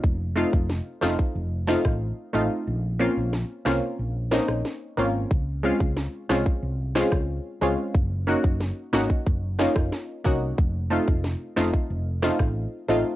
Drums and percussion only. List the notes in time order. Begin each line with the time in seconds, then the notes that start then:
0.04 kick
0.53 kick
0.70 snare
1.02 cross-stick, snare
1.19 kick
1.68 cross-stick, snare
1.85 kick, cross-stick
3.33 snare
3.66 cross-stick, snare
4.32 cross-stick, snare
4.48 cross-stick
4.65 snare
5.31 kick
5.80 kick
5.97 snare
6.29 cross-stick, snare
6.46 kick
6.95 cross-stick, snare
7.12 kick, cross-stick
7.95 kick
8.44 kick
8.60 snare
8.93 cross-stick, snare
9.10 kick
9.27 kick
9.59 cross-stick, snare
9.76 kick, cross-stick
9.92 snare
10.26 kick
10.58 kick
11.08 kick
11.24 snare
11.57 cross-stick, snare
11.74 kick
12.23 cross-stick, snare
12.39 kick, cross-stick